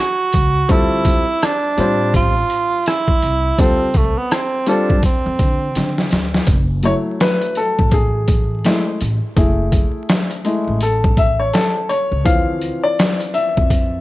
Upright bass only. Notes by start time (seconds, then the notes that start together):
0.34 C#2
0.69 D2
1.78 A2
2.14 A1
3.23 C2
3.59 D2
3.94 C2
4.90 G2
5.26 F2
5.39 D3
5.76 D3
6.12 D2
6.47 F#1
7.79 A1
9.01 A1
9.37 F#1
10.67 A1
12.12 C#2
12.26 D2
13.57 F2